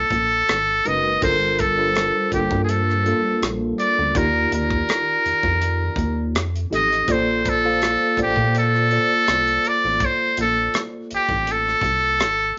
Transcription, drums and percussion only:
0.11 kick medium
0.11 closed hi-hat soft
0.49 cross-stick medium
0.49 closed hi-hat medium
0.86 closed hi-hat medium
1.22 kick medium
1.22 closed hi-hat medium
1.59 kick medium
1.59 closed hi-hat medium
1.95 cross-stick medium
1.95 closed hi-hat medium
2.32 kick medium
2.32 closed hi-hat medium
2.51 kick medium
2.69 closed hi-hat medium
2.90 cross-stick soft
3.06 closed hi-hat soft
3.43 cross-stick medium
3.43 closed hi-hat medium
3.79 closed hi-hat medium
4.15 kick loud
4.15 closed hi-hat medium
4.52 closed hi-hat medium
4.70 kick medium
4.89 cross-stick medium
4.89 closed hi-hat medium
5.26 closed hi-hat medium
5.43 kick medium
5.62 closed hi-hat medium
5.96 kick medium
5.96 closed hi-hat soft
6.35 cross-stick medium
6.35 closed hi-hat medium
6.56 closed hi-hat soft
6.73 closed hi-hat medium
6.92 cross-stick soft
6.92 closed hi-hat soft
7.08 kick medium
7.08 closed hi-hat medium
7.45 kick medium
7.45 closed hi-hat medium
7.82 cross-stick medium
7.82 closed hi-hat medium
8.17 kick medium
8.17 closed hi-hat medium
8.36 kick medium
8.55 closed hi-hat medium
8.75 cross-stick soft
8.91 closed hi-hat soft
9.28 cross-stick medium
9.28 closed hi-hat medium
9.47 closed hi-hat soft
9.65 closed hi-hat medium
10.00 kick loud
10.00 closed hi-hat medium
10.37 closed hi-hat medium
10.74 cross-stick loud
10.74 closed hi-hat medium
11.11 closed hi-hat medium
11.29 kick medium
11.47 closed hi-hat medium
11.68 cross-stick soft
11.81 kick medium
11.81 closed hi-hat soft
12.20 cross-stick loud
12.20 closed hi-hat medium

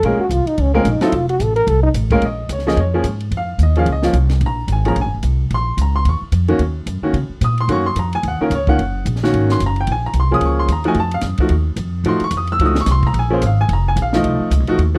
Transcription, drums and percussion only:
0.03 kick soft
0.03 ride medium
0.30 kick soft
0.30 hi-hat pedal medium
0.30 ride medium
0.47 ride soft
0.58 kick soft
0.58 ride medium
0.85 kick soft
0.85 hi-hat pedal soft
0.85 ride medium
1.01 snare soft
1.01 ride medium
1.12 kick soft
1.12 ride medium
1.29 ride medium
1.40 kick soft
1.40 hi-hat pedal medium
1.40 ride medium
1.56 ride soft
1.67 kick soft
1.67 ride medium
1.94 kick soft
1.94 hi-hat pedal medium
1.94 ride medium
2.10 kick medium
2.10 ride soft
2.22 kick soft
2.22 ride medium
2.49 kick soft
2.49 hi-hat pedal medium
2.49 ride medium
2.59 snare soft
2.68 snare soft
2.77 kick soft
2.77 ride medium
3.04 kick soft
3.04 hi-hat pedal medium
3.04 ride medium
3.20 ride soft
3.31 kick soft
3.31 ride medium
3.59 kick soft
3.59 hi-hat pedal medium
3.59 ride medium
3.75 ride soft
3.86 kick soft
3.86 ride medium
4.03 snare soft
4.13 kick soft
4.13 hi-hat pedal medium
4.13 ride medium
4.30 snare soft
4.30 ride soft
4.41 kick soft
4.41 ride medium
4.68 kick soft
4.68 hi-hat pedal soft
4.68 ride medium
4.85 ride soft
4.96 kick soft
4.96 ride medium
5.23 kick soft
5.23 hi-hat pedal medium
5.23 ride medium
5.51 kick soft
5.51 ride medium
5.78 kick soft
5.78 hi-hat pedal medium
5.78 ride medium
6.05 kick soft
6.05 ride medium
6.32 kick soft
6.32 hi-hat pedal medium
6.32 ride medium
6.48 ride soft
6.59 kick soft
6.59 ride medium
6.86 kick soft
6.86 hi-hat pedal medium
6.86 ride medium
7.14 kick soft
7.14 ride medium
7.41 kick soft
7.41 hi-hat pedal medium
7.41 ride medium
7.58 ride soft
7.69 kick soft
7.69 ride medium
7.96 kick soft
7.96 hi-hat pedal medium
7.96 ride medium
8.13 ride soft
8.23 kick soft
8.23 ride medium
8.51 kick soft
8.51 hi-hat pedal medium
8.51 ride medium
8.67 kick medium
8.79 kick soft
8.79 ride medium
9.06 kick soft
9.06 hi-hat pedal medium
9.06 ride medium
9.16 snare soft
9.24 snare soft
9.33 kick soft
9.33 ride medium
9.49 snare soft
9.60 kick soft
9.60 hi-hat pedal medium
9.60 ride medium
9.76 ride soft
9.87 kick soft
9.87 ride medium
10.13 kick soft
10.13 hi-hat pedal soft
10.13 ride medium
10.41 kick soft
10.41 ride medium
10.68 kick soft
10.68 hi-hat pedal medium
10.68 ride medium
10.84 ride soft
10.94 kick soft
10.94 ride medium
11.11 ride medium
11.21 kick soft
11.21 snare soft
11.21 hi-hat pedal soft
11.21 ride medium
11.38 kick medium
11.38 ride medium
11.49 kick soft
11.49 ride medium
11.76 kick soft
11.76 hi-hat pedal medium
11.76 ride medium
12.05 kick soft
12.05 ride medium
12.20 ride medium
12.31 kick soft
12.31 hi-hat pedal soft
12.31 ride medium
12.47 ride soft
12.59 kick soft
12.59 ride medium
12.75 snare medium
12.86 kick soft
12.86 snare soft
12.86 hi-hat pedal medium
12.86 ride medium
13.03 kick medium
13.14 kick soft
13.14 ride medium
13.42 kick soft
13.42 hi-hat pedal medium
13.42 ride medium
13.69 kick soft
13.69 ride medium
13.96 kick soft
13.96 hi-hat pedal medium
13.96 ride medium
14.13 snare medium
14.24 kick soft
14.24 ride medium
14.51 kick soft
14.51 hi-hat pedal medium
14.51 ride medium
14.67 ride soft
14.79 kick soft
14.79 ride medium

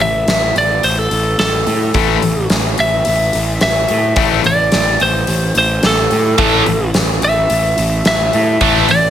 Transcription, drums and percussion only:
0.00 open hi-hat soft
0.28 snare loud
0.28 open hi-hat medium
0.56 open hi-hat soft
0.83 open hi-hat medium
1.11 open hi-hat medium
1.39 snare loud
1.39 open hi-hat medium
1.67 open hi-hat medium
1.94 kick loud
1.94 open hi-hat medium
2.22 open hi-hat medium
2.50 snare loud
2.50 open hi-hat medium
2.78 open hi-hat medium
3.05 open hi-hat medium
3.33 open hi-hat medium
3.61 snare loud
3.61 open hi-hat medium
3.88 open hi-hat medium
4.16 kick loud
4.16 open hi-hat medium
4.44 open hi-hat medium
4.72 snare loud
4.72 open hi-hat medium
5.00 open hi-hat soft
5.27 open hi-hat medium
5.55 open hi-hat medium
5.83 snare loud
5.83 open hi-hat medium
6.11 open hi-hat medium
6.38 kick loud
6.38 open hi-hat medium
6.66 open hi-hat soft
6.94 snare loud
6.94 open hi-hat medium
7.22 open hi-hat medium
7.50 open hi-hat medium
7.78 open hi-hat medium
8.05 snare loud
8.05 open hi-hat medium
8.33 open hi-hat medium
8.61 kick medium
8.61 open hi-hat medium
8.89 open hi-hat soft

